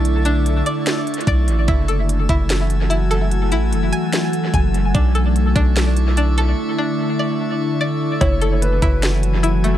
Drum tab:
HH |x--x--x--x--x--xxxx--x--|x--x--x--x--x--x--x--x--|x--x--x--x--x--x--x--x--|x--x--x--x--x--x--x--x--|
SD |------------o-----------|------------o-----------|------------o-----------|------------o-----------|
BD |------------------o-----|o--------o--------------|------------------o-----|o--------o--------------|

HH |------------------------|x--x--x--x--x--x--x--x--|
SD |------------------------|------------o-----------|
BD |------------------------|o--------o--------------|